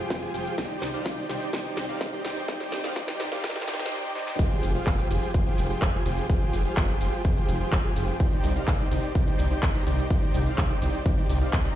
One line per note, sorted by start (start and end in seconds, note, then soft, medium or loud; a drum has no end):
0.00 0.19 F4 medium
0.00 0.19 G4 medium
0.00 0.19 G#4 medium
0.00 0.20 C5 medium
0.00 0.20 G5 loud
0.10 0.25 F1 medium
0.10 kick loud
0.10 snare medium
0.10 closed hi-hat medium
0.10 shaker soft
0.22 0.31 F4 medium
0.22 0.31 G4 medium
0.22 0.31 G#4 medium
0.22 0.31 C5 medium
0.22 0.31 G#5 loud
0.22 closed hi-hat soft
0.34 0.49 F1 loud
0.34 0.55 F4 medium
0.34 0.55 G4 medium
0.34 0.55 G#4 medium
0.34 0.55 C5 medium
0.34 0.55 G5 medium
0.34 open hi-hat loud
0.34 shaker medium
0.46 closed hi-hat soft
0.46 shaker soft
0.58 0.65 C2 loud
0.58 0.91 D#4 medium
0.58 0.91 G4 medium
0.58 0.91 D5 medium
0.58 kick loud
0.58 snare medium
0.58 closed hi-hat medium
0.58 shaker soft
0.70 closed hi-hat soft
0.82 0.96 C2 medium
0.82 snare medium
0.82 open hi-hat loud
0.82 shaker medium
0.94 1.15 D#4 medium
0.94 1.15 G4 medium
0.94 1.15 C5 medium
0.94 1.15 D5 medium
0.94 1.15 F5 medium
0.94 closed hi-hat soft
0.94 shaker soft
1.06 1.20 C2 medium
1.06 kick loud
1.06 snare medium
1.06 closed hi-hat medium
1.06 shaker soft
1.17 1.27 D#4 medium
1.17 1.27 G4 medium
1.17 1.27 C5 medium
1.17 1.27 D5 medium
1.17 1.27 G5 medium
1.17 closed hi-hat soft
1.29 1.37 C2 medium
1.29 1.50 D#4 medium
1.29 1.50 G4 medium
1.29 1.50 C5 medium
1.29 1.50 D5 medium
1.29 1.50 G5 medium
1.29 snare medium
1.29 open hi-hat loud
1.29 shaker medium
1.41 closed hi-hat soft
1.41 shaker soft
1.53 1.68 C2 medium
1.53 1.86 D#4 loud
1.53 1.86 G4 medium
1.53 1.86 C5 medium
1.53 1.86 D5 medium
1.53 1.86 G5 loud
1.53 kick loud
1.53 snare medium
1.53 closed hi-hat medium
1.53 shaker soft
1.65 closed hi-hat soft
1.77 1.92 C2 medium
1.77 snare medium
1.77 open hi-hat loud
1.77 shaker medium
1.89 2.10 D#4 medium
1.89 2.10 G4 medium
1.89 2.10 C5 medium
1.89 2.10 D5 medium
1.89 2.10 F5 medium
1.89 closed hi-hat soft
1.89 shaker soft
2.01 2.15 C2 medium
2.01 kick loud
2.01 snare medium
2.01 closed hi-hat medium
2.01 shaker soft
2.13 2.22 D#4 medium
2.13 2.22 G4 medium
2.13 2.22 C5 medium
2.13 2.22 D5 medium
2.13 2.22 G5 loud
2.13 closed hi-hat soft
2.24 2.39 C2 loud
2.24 2.46 D#4 medium
2.24 2.46 G4 medium
2.24 2.46 C5 medium
2.24 2.46 D5 medium
2.24 2.46 G5 medium
2.24 snare medium
2.24 open hi-hat loud
2.24 shaker medium
2.36 closed hi-hat soft
2.36 shaker soft
2.48 2.56 C2 loud
2.48 2.81 D#4 loud
2.48 2.81 G4 loud
2.48 2.81 C5 medium
2.48 2.81 D5 medium
2.48 2.81 G5 loud
2.48 kick loud
2.48 snare medium
2.48 closed hi-hat medium
2.48 shaker soft
2.60 snare medium
2.60 closed hi-hat soft
2.72 2.87 C2 medium
2.72 snare loud
2.72 open hi-hat loud
2.72 shaker medium
2.84 2.94 D#4 medium
2.84 2.94 G4 medium
2.84 2.94 C5 medium
2.84 2.94 D5 medium
2.84 2.94 F5 medium
2.84 snare medium
2.84 closed hi-hat soft
2.84 shaker soft
2.96 3.11 C2 medium
2.96 3.29 D#4 loud
2.96 3.29 G4 medium
2.96 3.29 C5 medium
2.96 3.29 D5 medium
2.96 3.29 G5 loud
2.96 kick loud
2.96 snare medium
2.96 closed hi-hat medium
2.96 shaker soft
3.08 snare medium
3.08 closed hi-hat soft
3.20 3.27 C2 medium
3.20 snare loud
3.20 open hi-hat loud
3.20 shaker medium
3.32 3.42 D#4 medium
3.32 3.42 G4 medium
3.32 3.42 C5 medium
3.32 3.42 D5 medium
3.32 3.42 F5 medium
3.32 snare medium
3.32 closed hi-hat soft
3.32 shaker soft
3.44 3.58 C2 medium
3.44 3.66 D#4 loud
3.44 3.66 G4 loud
3.44 3.66 C5 medium
3.44 3.66 G5 loud
3.44 kick loud
3.44 snare loud
3.44 closed hi-hat medium
3.44 shaker soft
3.50 snare medium
3.56 snare medium
3.56 closed hi-hat soft
3.62 snare medium
3.67 3.82 C2 medium
3.67 3.89 D#4 loud
3.67 3.89 G4 medium
3.67 3.89 C5 loud
3.67 3.89 D5 medium
3.67 3.89 G5 loud
3.67 snare loud
3.67 open hi-hat loud
3.67 shaker medium
3.74 snare medium
3.80 snare medium
3.80 closed hi-hat soft
3.80 shaker soft
3.86 snare medium
3.91 4.13 D#4 loud
3.91 4.13 G4 medium
3.91 4.13 C5 loud
3.91 4.13 D5 medium
3.91 4.13 G5 loud
4.15 4.37 D#4 loud
4.15 4.37 G4 medium
4.15 4.37 C5 medium
4.15 4.37 D5 medium
4.15 4.37 G5 loud
4.15 snare medium
4.27 snare medium
4.39 4.46 F1 loud
4.39 4.72 F4 loud
4.39 4.72 G4 medium
4.39 4.72 G#4 loud
4.39 4.72 C5 medium
4.39 kick loud
4.39 closed hi-hat loud
4.39 crash loud
4.39 shaker soft
4.51 closed hi-hat soft
4.51 shaker soft
4.63 4.77 F1 medium
4.63 open hi-hat loud
4.63 shaker medium
4.75 4.96 F4 medium
4.75 4.96 G4 medium
4.75 4.96 G#4 medium
4.75 4.96 C5 medium
4.75 4.96 F5 medium
4.75 closed hi-hat soft
4.75 shaker soft
4.87 5.01 F1 loud
4.87 kick loud
4.87 clap loud
4.87 closed hi-hat medium
4.87 shaker soft
4.99 5.08 F4 medium
4.99 5.08 G4 medium
4.99 5.08 G#4 medium
4.99 5.08 C5 medium
4.99 5.08 G5 loud
4.99 closed hi-hat soft
4.99 shaker soft
5.10 5.18 F1 medium
5.10 5.31 F4 medium
5.10 5.31 G4 medium
5.10 5.31 G#4 medium
5.10 5.31 C5 medium
5.10 5.31 G5 medium
5.10 open hi-hat loud
5.10 shaker medium
5.23 closed hi-hat soft
5.23 shaker soft
5.34 5.49 F1 medium
5.34 5.43 F4 medium
5.34 5.43 G4 medium
5.34 5.43 G#4 medium
5.34 5.43 C5 medium
5.34 5.43 G5 loud
5.34 kick loud
5.34 closed hi-hat loud
5.34 shaker soft
5.46 5.67 F4 medium
5.46 5.67 G4 medium
5.46 5.67 G#4 medium
5.46 5.67 C5 medium
5.46 5.67 G5 loud
5.46 closed hi-hat soft
5.46 shaker soft
5.58 5.73 F1 medium
5.58 open hi-hat loud
5.58 shaker medium
5.70 5.91 F4 medium
5.70 5.91 G4 medium
5.70 5.91 G#4 medium
5.70 5.91 C5 medium
5.70 5.91 G5 loud
5.70 closed hi-hat soft
5.70 shaker soft
5.82 5.96 F1 medium
5.82 kick loud
5.82 clap loud
5.82 closed hi-hat loud
5.82 shaker soft
5.94 6.03 F4 medium
5.94 6.03 G4 medium
5.94 6.03 G#4 medium
5.94 6.03 C5 medium
5.94 6.03 G#5 loud
5.94 closed hi-hat soft
6.06 6.20 F1 loud
6.06 6.27 F4 medium
6.06 6.27 G4 medium
6.06 6.27 G#4 medium
6.06 6.27 C5 medium
6.06 6.27 G5 medium
6.06 open hi-hat loud
6.06 shaker medium
6.18 closed hi-hat soft
6.18 shaker soft
6.30 6.37 F1 loud
6.30 6.62 F4 loud
6.30 6.62 G4 loud
6.30 6.62 G#4 loud
6.30 6.62 C5 medium
6.30 6.62 G5 loud
6.30 kick loud
6.30 closed hi-hat loud
6.30 shaker soft
6.41 closed hi-hat soft
6.41 shaker soft
6.53 6.68 F1 medium
6.53 open hi-hat loud
6.53 shaker medium
6.65 6.86 F4 medium
6.65 6.86 G4 medium
6.65 6.86 G#4 medium
6.65 6.86 C5 medium
6.65 6.86 F5 medium
6.65 closed hi-hat soft
6.65 shaker soft
6.77 6.92 F1 medium
6.77 kick loud
6.77 clap loud
6.77 closed hi-hat medium
6.77 shaker soft
6.89 6.98 F4 medium
6.89 6.98 G4 medium
6.89 6.98 G#4 medium
6.89 6.98 C5 medium
6.89 6.98 G5 loud
6.89 closed hi-hat soft
6.89 shaker soft
7.01 7.08 F1 medium
7.01 7.22 F4 medium
7.01 7.22 G4 medium
7.01 7.22 G#4 medium
7.01 7.22 C5 medium
7.01 7.22 G5 medium
7.01 open hi-hat loud
7.01 shaker medium
7.13 closed hi-hat soft
7.13 shaker soft
7.25 7.39 F1 medium
7.25 7.34 F4 medium
7.25 7.34 G4 medium
7.25 7.34 G#4 medium
7.25 7.34 C5 medium
7.25 7.34 G5 loud
7.25 kick loud
7.25 closed hi-hat loud
7.25 shaker soft
7.37 7.58 F4 medium
7.37 7.58 G4 medium
7.37 7.58 G#4 medium
7.37 7.58 C5 medium
7.37 7.58 G5 loud
7.37 closed hi-hat soft
7.37 shaker soft
7.49 7.63 F1 medium
7.49 open hi-hat loud
7.49 shaker medium
7.60 7.81 F4 medium
7.60 7.81 G4 medium
7.60 7.81 G#4 medium
7.60 7.81 C5 medium
7.60 7.81 G5 loud
7.60 closed hi-hat soft
7.60 shaker soft
7.72 7.87 F1 medium
7.72 kick loud
7.72 clap loud
7.72 open hi-hat medium
7.72 shaker soft
7.84 7.93 F4 medium
7.84 7.93 G4 medium
7.84 7.93 G#4 medium
7.84 7.93 C5 medium
7.84 7.93 G#5 loud
7.84 closed hi-hat soft
7.96 8.11 F1 loud
7.96 8.17 F4 medium
7.96 8.17 G4 medium
7.96 8.17 G#4 medium
7.96 8.17 C5 medium
7.96 8.17 G5 medium
7.96 open hi-hat loud
7.96 shaker medium
8.08 closed hi-hat soft
8.08 shaker soft
8.20 8.27 C2 loud
8.20 8.53 D#4 loud
8.20 8.53 G4 loud
8.20 8.53 C5 medium
8.20 8.53 D5 loud
8.20 8.53 G5 loud
8.20 kick loud
8.20 closed hi-hat medium
8.20 shaker soft
8.32 closed hi-hat soft
8.32 shaker soft
8.44 8.58 C2 medium
8.44 open hi-hat loud
8.44 shaker medium
8.56 8.77 D#4 medium
8.56 8.77 G4 medium
8.56 8.77 C5 medium
8.56 8.77 D5 medium
8.56 8.77 F5 medium
8.56 closed hi-hat soft
8.56 shaker soft
8.68 8.82 C2 medium
8.68 kick loud
8.68 clap loud
8.68 closed hi-hat medium
8.68 shaker soft
8.79 8.89 D#4 medium
8.79 8.88 G4 medium
8.79 8.89 C5 medium
8.79 8.89 D5 medium
8.79 8.88 G5 loud
8.79 closed hi-hat soft
8.79 shaker soft
8.91 8.99 C2 medium
8.91 9.12 D#4 medium
8.91 9.12 G4 medium
8.91 9.12 C5 medium
8.91 9.12 D5 medium
8.91 9.12 G5 medium
8.91 open hi-hat loud
8.91 shaker medium
9.03 closed hi-hat soft
9.03 shaker soft
9.15 9.30 C2 medium
9.15 9.24 D#4 medium
9.15 9.24 G4 medium
9.15 9.24 C5 medium
9.15 9.24 D5 medium
9.15 9.24 G5 loud
9.15 kick loud
9.15 closed hi-hat medium
9.15 shaker soft
9.27 9.48 D#4 loud
9.27 9.48 G4 medium
9.27 9.48 C5 medium
9.27 9.48 D5 medium
9.27 9.48 G5 loud
9.27 closed hi-hat soft
9.27 shaker soft
9.39 9.54 C2 medium
9.39 open hi-hat loud
9.39 shaker medium
9.51 9.72 D#4 medium
9.51 9.72 G4 medium
9.51 9.72 C5 medium
9.51 9.72 D5 medium
9.51 9.72 G5 loud
9.51 closed hi-hat soft
9.51 shaker soft
9.63 9.77 C2 medium
9.63 kick loud
9.63 clap loud
9.63 closed hi-hat medium
9.63 shaker soft
9.75 9.84 D#4 medium
9.75 9.84 G4 medium
9.75 9.84 C5 medium
9.75 9.84 D5 medium
9.75 9.84 A#5 loud
9.75 closed hi-hat soft
9.87 10.01 C2 loud
9.87 10.08 D#4 medium
9.87 10.08 G4 medium
9.87 10.08 C5 medium
9.87 10.08 D5 medium
9.87 10.08 G5 medium
9.87 open hi-hat loud
9.87 shaker medium
9.99 closed hi-hat soft
9.99 shaker soft
10.10 10.18 C2 loud
10.10 10.43 D#4 loud
10.10 10.43 G4 medium
10.10 10.43 C5 loud
10.10 10.43 D5 medium
10.10 10.43 G5 loud
10.10 kick loud
10.10 closed hi-hat medium
10.10 shaker soft
10.22 closed hi-hat soft
10.22 shaker soft
10.34 10.49 C2 medium
10.34 open hi-hat loud
10.34 shaker medium
10.46 10.67 D#4 medium
10.46 10.67 G4 medium
10.46 10.67 C5 medium
10.46 10.67 D5 medium
10.46 10.67 F5 medium
10.46 closed hi-hat soft
10.46 shaker soft
10.58 10.73 C2 loud
10.58 kick loud
10.58 clap loud
10.58 closed hi-hat medium
10.58 shaker soft
10.70 10.79 D#4 medium
10.70 10.79 G4 medium
10.70 10.79 C5 medium
10.70 10.79 D5 medium
10.70 10.79 G5 loud
10.70 closed hi-hat soft
10.70 shaker soft
10.82 10.89 C2 medium
10.82 11.03 D#4 medium
10.82 11.03 G4 medium
10.82 11.03 C5 medium
10.82 11.03 D5 medium
10.82 11.03 G5 medium
10.82 open hi-hat loud
10.82 shaker medium
10.94 closed hi-hat soft
10.94 shaker soft
11.06 11.20 C2 medium
11.06 11.15 D#4 medium
11.06 11.15 G4 medium
11.06 11.15 C5 medium
11.06 11.15 D5 medium
11.06 11.15 G5 loud
11.06 kick loud
11.06 closed hi-hat medium
11.06 shaker soft
11.17 11.27 D#4 medium
11.17 11.27 G4 medium
11.17 11.27 C5 medium
11.17 11.27 D5 medium
11.17 11.27 G5 loud
11.17 closed hi-hat soft
11.17 shaker soft
11.29 11.44 C2 medium
11.29 11.39 D#4 medium
11.29 11.39 G4 medium
11.29 11.39 C5 medium
11.29 11.39 D5 medium
11.29 11.39 G5 loud
11.29 open hi-hat loud
11.29 shaker medium
11.41 11.59 D#4 medium
11.41 11.59 G4 medium
11.41 11.59 C5 medium
11.41 11.59 D5 medium
11.41 11.59 F5 medium
11.41 closed hi-hat soft
11.41 shaker soft
11.53 11.68 C2 medium
11.53 kick loud
11.53 clap loud
11.53 open hi-hat medium
11.53 shaker soft
11.65 11.74 D#4 medium
11.65 11.74 G4 medium
11.65 11.74 C5 medium
11.65 11.74 D5 medium
11.65 11.74 A#5 loud
11.65 closed hi-hat soft
11.65 shaker soft